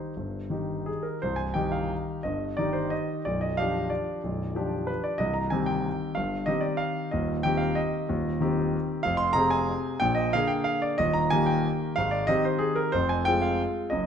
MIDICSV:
0, 0, Header, 1, 2, 480
1, 0, Start_track
1, 0, Key_signature, -3, "minor"
1, 0, Tempo, 351906
1, 213, Time_signature, 3, 2, 24, 8
1, 2613, Tempo, 330215
1, 6933, Tempo, 320171
1, 14613, Tempo, 325556
1, 20588, End_track
2, 0, Start_track
2, 0, Title_t, "Grand piano"
2, 0, Program_c, 0, 0
2, 0, Note_on_c, 0, 51, 36
2, 0, Note_on_c, 0, 63, 36
2, 0, Note_on_c, 0, 67, 37
2, 0, Note_on_c, 0, 72, 38
2, 171, Note_off_c, 0, 51, 0
2, 174, Note_off_c, 0, 63, 0
2, 178, Note_off_c, 0, 67, 0
2, 222, Note_on_c, 0, 31, 35
2, 227, Note_on_c, 0, 43, 37
2, 517, Control_c, 0, 64, 127
2, 681, Note_on_c, 0, 51, 35
2, 687, Note_off_c, 0, 31, 0
2, 690, Note_off_c, 0, 43, 0
2, 696, Note_on_c, 0, 63, 32
2, 696, Note_on_c, 0, 67, 38
2, 1173, Note_on_c, 0, 68, 48
2, 1190, Note_off_c, 0, 72, 0
2, 1216, Control_c, 0, 64, 0
2, 1401, Note_on_c, 0, 70, 47
2, 1434, Note_off_c, 0, 68, 0
2, 1620, Note_off_c, 0, 51, 0
2, 1627, Note_off_c, 0, 63, 0
2, 1627, Note_off_c, 0, 67, 0
2, 1661, Note_off_c, 0, 70, 0
2, 1663, Note_on_c, 0, 72, 64
2, 1677, Note_on_c, 0, 24, 44
2, 1686, Note_on_c, 0, 36, 46
2, 1856, Note_on_c, 0, 80, 67
2, 1901, Note_off_c, 0, 72, 0
2, 1967, Control_c, 0, 64, 127
2, 2097, Note_on_c, 0, 79, 67
2, 2115, Note_off_c, 0, 80, 0
2, 2117, Note_on_c, 0, 63, 43
2, 2119, Note_on_c, 0, 67, 43
2, 2120, Note_on_c, 0, 51, 44
2, 2126, Note_off_c, 0, 24, 0
2, 2131, Note_off_c, 0, 36, 0
2, 2341, Note_on_c, 0, 77, 57
2, 2355, Note_off_c, 0, 79, 0
2, 2628, Control_c, 0, 64, 0
2, 3027, Note_off_c, 0, 63, 0
2, 3028, Note_off_c, 0, 67, 0
2, 3029, Note_off_c, 0, 51, 0
2, 3072, Note_on_c, 0, 75, 62
2, 3080, Note_off_c, 0, 77, 0
2, 3090, Note_on_c, 0, 31, 44
2, 3093, Note_on_c, 0, 43, 47
2, 3417, Control_c, 0, 64, 127
2, 3556, Note_off_c, 0, 31, 0
2, 3558, Note_off_c, 0, 43, 0
2, 3559, Note_on_c, 0, 74, 71
2, 3561, Note_off_c, 0, 75, 0
2, 3586, Note_on_c, 0, 51, 42
2, 3590, Note_on_c, 0, 63, 42
2, 3593, Note_on_c, 0, 67, 44
2, 3794, Note_on_c, 0, 72, 52
2, 3811, Note_off_c, 0, 74, 0
2, 4048, Note_on_c, 0, 75, 67
2, 4055, Note_off_c, 0, 72, 0
2, 4083, Control_c, 0, 64, 0
2, 4492, Note_off_c, 0, 51, 0
2, 4494, Note_off_c, 0, 63, 0
2, 4496, Note_off_c, 0, 67, 0
2, 4535, Note_off_c, 0, 75, 0
2, 4553, Note_on_c, 0, 74, 66
2, 4568, Note_on_c, 0, 23, 45
2, 4572, Note_on_c, 0, 35, 51
2, 4781, Note_off_c, 0, 74, 0
2, 4785, Note_on_c, 0, 75, 62
2, 4863, Control_c, 0, 64, 127
2, 5013, Note_off_c, 0, 23, 0
2, 5015, Note_off_c, 0, 35, 0
2, 5019, Note_off_c, 0, 75, 0
2, 5023, Note_on_c, 0, 77, 79
2, 5042, Note_on_c, 0, 53, 45
2, 5052, Note_on_c, 0, 67, 48
2, 5053, Note_on_c, 0, 62, 45
2, 5494, Note_on_c, 0, 74, 56
2, 5504, Note_off_c, 0, 77, 0
2, 5513, Control_c, 0, 64, 0
2, 5935, Note_off_c, 0, 53, 0
2, 5940, Note_off_c, 0, 62, 0
2, 5940, Note_off_c, 0, 67, 0
2, 5988, Note_on_c, 0, 23, 44
2, 5990, Note_on_c, 0, 35, 44
2, 6228, Control_c, 0, 64, 127
2, 6439, Note_off_c, 0, 23, 0
2, 6440, Note_off_c, 0, 35, 0
2, 6447, Note_on_c, 0, 53, 44
2, 6459, Note_on_c, 0, 67, 48
2, 6466, Note_on_c, 0, 62, 44
2, 6687, Note_off_c, 0, 74, 0
2, 6905, Note_on_c, 0, 71, 63
2, 6949, Control_c, 0, 64, 0
2, 7155, Note_on_c, 0, 74, 58
2, 7165, Note_off_c, 0, 71, 0
2, 7354, Note_off_c, 0, 53, 0
2, 7361, Note_off_c, 0, 67, 0
2, 7364, Note_off_c, 0, 62, 0
2, 7373, Note_on_c, 0, 75, 77
2, 7390, Note_on_c, 0, 24, 47
2, 7394, Note_on_c, 0, 36, 51
2, 7404, Note_off_c, 0, 74, 0
2, 7604, Note_on_c, 0, 82, 64
2, 7629, Note_off_c, 0, 75, 0
2, 7695, Control_c, 0, 64, 127
2, 7856, Note_on_c, 0, 80, 71
2, 7866, Note_off_c, 0, 24, 0
2, 7868, Note_off_c, 0, 36, 0
2, 7870, Note_off_c, 0, 82, 0
2, 7878, Note_on_c, 0, 60, 46
2, 7882, Note_on_c, 0, 51, 48
2, 7897, Note_on_c, 0, 67, 50
2, 8094, Note_on_c, 0, 79, 67
2, 8123, Note_off_c, 0, 80, 0
2, 8412, Control_c, 0, 64, 0
2, 8795, Note_off_c, 0, 60, 0
2, 8797, Note_off_c, 0, 51, 0
2, 8804, Note_off_c, 0, 67, 0
2, 8822, Note_on_c, 0, 77, 71
2, 8839, Note_off_c, 0, 79, 0
2, 8849, Note_on_c, 0, 31, 49
2, 8849, Note_on_c, 0, 43, 52
2, 9084, Control_c, 0, 64, 127
2, 9289, Note_on_c, 0, 75, 78
2, 9306, Note_off_c, 0, 31, 0
2, 9306, Note_off_c, 0, 43, 0
2, 9307, Note_off_c, 0, 77, 0
2, 9311, Note_on_c, 0, 51, 43
2, 9322, Note_on_c, 0, 60, 41
2, 9325, Note_on_c, 0, 67, 52
2, 9349, Control_c, 0, 64, 0
2, 9510, Note_on_c, 0, 74, 62
2, 9552, Note_off_c, 0, 75, 0
2, 9757, Note_on_c, 0, 77, 78
2, 9787, Note_off_c, 0, 74, 0
2, 10221, Note_off_c, 0, 51, 0
2, 10226, Note_off_c, 0, 60, 0
2, 10227, Note_off_c, 0, 67, 0
2, 10258, Note_off_c, 0, 77, 0
2, 10270, Note_on_c, 0, 75, 58
2, 10295, Note_on_c, 0, 39, 55
2, 10298, Note_on_c, 0, 27, 51
2, 10576, Control_c, 0, 64, 127
2, 10749, Note_on_c, 0, 79, 91
2, 10751, Note_off_c, 0, 39, 0
2, 10753, Note_off_c, 0, 27, 0
2, 10753, Note_off_c, 0, 75, 0
2, 10777, Note_on_c, 0, 60, 45
2, 10779, Note_on_c, 0, 51, 48
2, 10782, Note_on_c, 0, 67, 53
2, 10960, Note_on_c, 0, 77, 69
2, 11002, Note_off_c, 0, 79, 0
2, 11229, Note_on_c, 0, 75, 74
2, 11235, Note_off_c, 0, 77, 0
2, 11276, Control_c, 0, 64, 0
2, 11693, Note_off_c, 0, 60, 0
2, 11694, Note_off_c, 0, 51, 0
2, 11696, Note_off_c, 0, 67, 0
2, 11733, Note_on_c, 0, 39, 59
2, 11735, Note_on_c, 0, 27, 47
2, 11998, Control_c, 0, 64, 127
2, 12198, Note_off_c, 0, 39, 0
2, 12200, Note_off_c, 0, 27, 0
2, 12206, Note_on_c, 0, 51, 51
2, 12223, Note_on_c, 0, 60, 47
2, 12225, Note_on_c, 0, 67, 57
2, 12449, Note_off_c, 0, 75, 0
2, 12733, Control_c, 0, 64, 0
2, 13120, Note_off_c, 0, 51, 0
2, 13129, Note_off_c, 0, 60, 0
2, 13130, Note_off_c, 0, 67, 0
2, 13142, Note_on_c, 0, 77, 92
2, 13168, Note_on_c, 0, 41, 58
2, 13169, Note_on_c, 0, 29, 52
2, 13356, Note_on_c, 0, 84, 85
2, 13393, Note_off_c, 0, 77, 0
2, 13415, Control_c, 0, 64, 127
2, 13592, Note_on_c, 0, 82, 101
2, 13619, Note_on_c, 0, 48, 50
2, 13624, Note_off_c, 0, 84, 0
2, 13629, Note_off_c, 0, 41, 0
2, 13630, Note_off_c, 0, 29, 0
2, 13630, Note_on_c, 0, 68, 58
2, 13634, Note_on_c, 0, 60, 53
2, 13855, Note_on_c, 0, 80, 82
2, 13866, Note_off_c, 0, 82, 0
2, 14160, Control_c, 0, 64, 0
2, 14538, Note_off_c, 0, 48, 0
2, 14544, Note_off_c, 0, 68, 0
2, 14546, Note_off_c, 0, 60, 0
2, 14592, Note_on_c, 0, 79, 97
2, 14594, Note_off_c, 0, 80, 0
2, 14615, Note_on_c, 0, 34, 64
2, 14620, Note_on_c, 0, 46, 59
2, 14815, Note_on_c, 0, 75, 80
2, 14839, Note_off_c, 0, 79, 0
2, 14857, Control_c, 0, 64, 127
2, 15074, Note_off_c, 0, 75, 0
2, 15078, Note_off_c, 0, 34, 0
2, 15081, Note_off_c, 0, 46, 0
2, 15086, Note_on_c, 0, 77, 97
2, 15105, Note_on_c, 0, 50, 55
2, 15112, Control_c, 0, 64, 0
2, 15112, Note_on_c, 0, 68, 59
2, 15116, Note_on_c, 0, 58, 58
2, 15297, Note_on_c, 0, 79, 70
2, 15331, Note_off_c, 0, 77, 0
2, 15544, Note_on_c, 0, 77, 84
2, 15557, Note_off_c, 0, 79, 0
2, 15798, Note_off_c, 0, 77, 0
2, 15804, Note_on_c, 0, 74, 71
2, 15993, Note_off_c, 0, 50, 0
2, 15997, Note_off_c, 0, 68, 0
2, 15999, Note_off_c, 0, 58, 0
2, 16041, Note_off_c, 0, 74, 0
2, 16041, Note_on_c, 0, 75, 90
2, 16058, Note_on_c, 0, 27, 61
2, 16060, Note_on_c, 0, 39, 57
2, 16271, Note_on_c, 0, 82, 77
2, 16278, Note_off_c, 0, 75, 0
2, 16291, Control_c, 0, 64, 127
2, 16515, Note_off_c, 0, 27, 0
2, 16516, Note_off_c, 0, 39, 0
2, 16518, Note_off_c, 0, 82, 0
2, 16521, Note_on_c, 0, 80, 106
2, 16546, Note_on_c, 0, 58, 52
2, 16550, Note_on_c, 0, 67, 58
2, 16554, Note_on_c, 0, 51, 55
2, 16755, Note_on_c, 0, 79, 66
2, 16770, Note_off_c, 0, 80, 0
2, 17042, Control_c, 0, 64, 0
2, 17457, Note_off_c, 0, 58, 0
2, 17459, Note_off_c, 0, 67, 0
2, 17461, Note_off_c, 0, 51, 0
2, 17483, Note_on_c, 0, 77, 89
2, 17497, Note_off_c, 0, 79, 0
2, 17508, Note_on_c, 0, 44, 56
2, 17513, Note_on_c, 0, 32, 57
2, 17709, Note_on_c, 0, 74, 70
2, 17725, Note_off_c, 0, 77, 0
2, 17741, Control_c, 0, 64, 127
2, 17945, Note_on_c, 0, 75, 95
2, 17961, Note_off_c, 0, 74, 0
2, 17962, Note_off_c, 0, 44, 0
2, 17964, Note_off_c, 0, 32, 0
2, 17966, Note_on_c, 0, 51, 52
2, 17970, Note_on_c, 0, 67, 59
2, 17973, Note_on_c, 0, 60, 55
2, 17994, Control_c, 0, 64, 0
2, 18202, Note_off_c, 0, 75, 0
2, 18208, Note_on_c, 0, 72, 64
2, 18409, Note_on_c, 0, 68, 78
2, 18456, Note_off_c, 0, 72, 0
2, 18661, Note_on_c, 0, 70, 70
2, 18676, Note_off_c, 0, 68, 0
2, 18873, Note_off_c, 0, 51, 0
2, 18875, Note_off_c, 0, 67, 0
2, 18876, Note_off_c, 0, 60, 0
2, 18906, Note_on_c, 0, 72, 85
2, 18915, Note_off_c, 0, 70, 0
2, 18935, Note_on_c, 0, 29, 56
2, 18940, Note_on_c, 0, 41, 63
2, 19154, Note_off_c, 0, 72, 0
2, 19156, Note_on_c, 0, 80, 75
2, 19189, Control_c, 0, 64, 127
2, 19391, Note_on_c, 0, 79, 97
2, 19393, Note_off_c, 0, 29, 0
2, 19396, Note_off_c, 0, 41, 0
2, 19401, Note_off_c, 0, 80, 0
2, 19412, Note_on_c, 0, 60, 49
2, 19419, Note_on_c, 0, 56, 50
2, 19427, Note_on_c, 0, 65, 54
2, 19638, Note_on_c, 0, 77, 59
2, 19642, Note_off_c, 0, 79, 0
2, 19907, Control_c, 0, 64, 0
2, 20319, Note_off_c, 0, 60, 0
2, 20323, Note_off_c, 0, 56, 0
2, 20327, Note_off_c, 0, 65, 0
2, 20345, Note_on_c, 0, 75, 71
2, 20367, Note_on_c, 0, 42, 54
2, 20369, Note_off_c, 0, 77, 0
2, 20381, Note_on_c, 0, 30, 50
2, 20588, Note_off_c, 0, 30, 0
2, 20588, Note_off_c, 0, 42, 0
2, 20588, Note_off_c, 0, 75, 0
2, 20588, End_track
0, 0, End_of_file